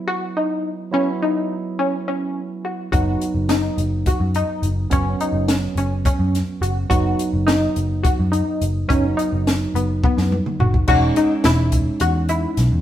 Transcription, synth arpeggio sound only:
0.07 0.24 F#4 medium
0.37 0.69 D#4 medium
0.94 1.10 C#4 medium
1.22 1.55 D#4 medium
1.79 1.95 C#4 medium
2.08 2.40 C#4 medium
2.65 2.81 F#4 medium
2.92 3.25 F#4 medium
3.49 3.82 D#4 medium
4.07 4.23 F#4 medium
4.36 4.68 D#4 medium
4.92 5.09 C#4 medium
5.21 5.53 D#4 medium
5.78 5.94 C#4 medium
6.06 6.38 C#4 medium
6.62 6.78 F#4 medium
6.90 7.22 F#4 medium
7.47 7.79 D#4 medium
8.03 8.20 F#4 medium
8.32 8.64 D#4 medium
8.89 9.05 C#4 medium
9.17 9.50 D#4 medium
9.75 9.91 B3 medium
10.04 10.36 B3 medium
10.60 10.76 F#4 medium
10.88 11.05 F#4 loud
11.17 11.33 D#4 medium
11.45 11.77 E4 medium
12.01 12.17 F#4 medium
12.29 12.62 E4 medium

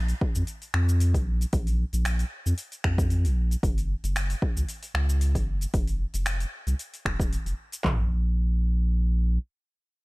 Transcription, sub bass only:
0.00 0.14 A#1 loud
0.36 0.43 F2 medium
0.74 1.16 F2 loud
1.14 1.45 A#1 loud
1.53 1.85 A#1 loud
1.93 2.24 A#1 loud
2.46 2.54 F2 medium
2.84 3.26 F2 loud
3.25 3.56 A#1 medium
3.63 3.95 F#1 loud
4.04 4.35 F#1 loud
4.56 4.64 C#2 medium
4.94 5.36 C#2 loud
5.35 5.66 F#1 medium
5.74 6.05 F1 loud
6.14 6.45 F1 loud
6.67 6.75 C2 medium
7.05 7.37 D#1 loud
7.46 7.53 F1 medium
7.84 9.38 A#1 medium

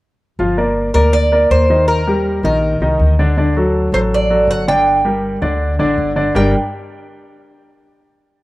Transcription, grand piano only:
0.39 0.54 F3 medium
0.39 0.54 F4 medium
0.39 0.55 F5 medium
0.57 0.88 A#3 medium
0.57 0.88 A#4 medium
0.57 0.88 D5 medium
0.95 1.25 A#3 medium
0.95 1.26 A#4 medium
0.95 1.26 D5 medium
1.32 1.63 A#3 medium
1.32 1.63 A#4 medium
1.32 1.63 D5 medium
1.70 2.00 D#3 medium
1.70 2.00 D#4 medium
1.70 2.01 D#5 medium
2.07 2.38 G3 medium
2.07 2.38 G4 medium
2.07 2.38 A#4 medium
2.44 2.75 D#3 medium
2.44 2.75 D#4 medium
2.44 2.75 D#5 medium
2.82 3.12 D#3 medium
2.82 3.12 D#4 medium
2.82 3.12 D#5 medium
3.19 3.34 D3 medium
3.19 3.34 D4 medium
3.19 3.34 D5 medium
3.37 3.53 D3 medium
3.37 3.53 D4 medium
3.37 3.53 D5 medium
3.57 3.87 F#3 medium
3.57 3.87 F#4 medium
3.57 3.87 A4 medium
3.93 4.24 F#3 medium
3.93 4.24 F#4 medium
3.93 4.24 A4 medium
4.30 4.61 F#3 medium
4.30 4.61 F#4 medium
4.30 4.61 A4 medium
4.68 4.98 D3 medium
4.68 4.98 D4 medium
4.68 4.99 D5 medium
5.04 5.35 G3 medium
5.04 5.35 G4 medium
5.04 5.36 A#4 medium
5.41 5.72 D3 medium
5.41 5.73 D4 medium
5.41 5.73 D5 medium
5.79 6.10 D3 medium
5.79 6.10 D4 medium
5.79 6.10 D5 medium
6.16 6.32 D3 medium
6.16 6.32 D4 medium
6.16 6.32 D5 medium
6.35 6.52 G3 medium
6.35 6.52 D4 medium
6.35 6.53 G4 medium
6.35 6.53 A#4 medium
6.35 6.53 D5 medium
6.35 6.53 G5 loud

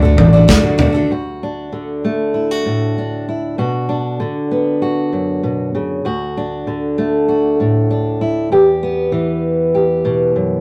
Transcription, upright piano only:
0.00 0.15 D4 medium
0.00 0.34 F#4 medium
0.00 0.64 A4 medium
0.17 0.47 D4 medium
0.33 0.95 D5 medium
0.48 0.76 D4 medium
0.63 1.10 F#4 medium
0.78 1.10 D4 medium
0.94 1.10 A4 medium

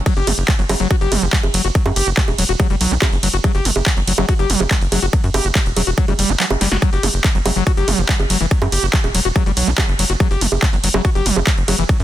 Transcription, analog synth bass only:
0.17 0.23 F#1 medium
0.27 0.33 F#1 loud
0.38 0.44 F#1 medium
0.59 0.65 G1 medium
0.69 0.76 F#1 loud
0.80 0.86 F#1 medium
1.01 1.07 F#1 medium
1.12 1.18 F#1 loud
1.22 1.28 F#1 medium
1.43 1.50 F#1 medium
1.54 1.60 F#1 loud
1.65 1.71 F#1 loud
1.86 1.92 F#2 medium
1.96 2.02 F#1 loud
2.07 2.13 F#1 loud
2.28 2.34 E1 medium
2.38 2.45 E1 loud
2.49 2.55 E1 medium
2.70 2.76 F#1 medium
2.81 2.87 B1 loud
2.91 2.97 B1 medium
3.12 3.19 F#1 medium
3.23 3.29 F#1 loud
3.34 3.40 F#1 loud
3.55 3.61 F#1 medium
3.65 3.71 F#1 loud
3.76 3.82 F#1 medium
3.97 4.03 G1 medium
4.08 4.14 F#1 loud
4.18 4.24 F#1 medium
4.39 4.45 F#1 medium
4.50 4.56 F#1 loud
4.60 4.66 F#1 medium
4.81 4.88 F#1 medium
4.92 4.98 F#1 loud
5.03 5.09 F#1 medium
5.24 5.30 F#2 medium
5.34 5.40 F#1 loud
5.45 5.51 F#1 medium
5.66 5.72 E1 medium
5.77 5.83 E1 loud
5.87 5.93 E1 loud
6.08 6.14 F#1 medium
6.19 6.25 F#1 loud
6.29 6.35 F#1 loud
6.51 6.57 F#1 medium
6.61 6.67 F#1 loud
6.72 6.78 F#1 medium
6.93 6.99 F#1 medium
7.03 7.09 F#1 loud
7.14 7.20 F#1 medium
7.35 7.41 G1 medium
7.46 7.52 F#1 loud
7.56 7.62 F#1 loud
7.77 7.83 F#1 medium
7.88 7.94 F#1 loud
7.98 8.05 F#1 medium
8.20 8.26 F#1 medium
8.30 8.36 F#1 loud
8.41 8.47 F#1 loud
8.62 8.68 F#2 medium
8.72 8.78 F#1 loud
8.83 8.89 F#1 medium
9.04 9.10 E1 medium
9.15 9.21 E1 loud
9.25 9.31 E1 loud
9.46 9.52 F#1 medium
9.57 9.63 B1 loud
9.67 9.74 B1 medium
9.89 9.95 F#1 medium
9.99 10.05 F#1 loud
10.10 10.16 F#1 medium
10.31 10.37 F#1 medium
10.41 10.47 F#1 loud
10.52 10.58 F#1 loud
10.73 10.79 G1 medium
10.84 10.90 F#1 loud
10.94 11.00 F#1 loud
11.15 11.21 F#1 medium
11.26 11.32 F#1 loud
11.36 11.43 F#1 loud
11.58 11.64 F#1 medium
11.68 11.74 F#1 loud
11.79 11.85 F#1 medium
12.00 12.04 F#2 medium

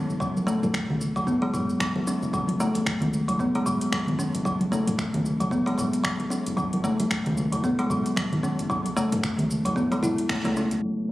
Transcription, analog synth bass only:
0.09 0.43 F#1 loud
0.47 0.59 F#1 medium
0.89 1.09 C#2 loud
1.16 1.50 F#1 loud
1.53 1.66 F#1 medium
1.95 2.04 F#1 medium
2.22 2.56 F#1 loud
2.60 2.72 F#1 loud
3.02 3.22 C#2 loud
3.28 3.62 F#1 loud
3.66 3.78 F#1 medium
4.08 4.16 F#1 medium
4.34 4.68 F#1 loud
4.72 4.84 F#1 loud
5.14 5.34 C#2 loud
5.41 5.74 F#1 loud
5.78 5.90 F#1 medium
6.20 6.29 F#1 medium
6.47 6.81 F#1 loud
6.84 6.96 F#1 loud
7.26 7.46 C#2 loud
7.53 7.87 F#1 medium
7.91 8.03 F#1 medium
8.33 8.41 F#1 medium
8.60 8.93 F#1 loud
8.97 9.09 F#1 loud
9.39 9.59 C#2 loud
9.66 9.99 F#1 loud
10.04 10.15 F#1 loud
10.45 10.65 C#2 medium
10.72 10.80 F#1 medium
10.83 11.12 F#1 medium

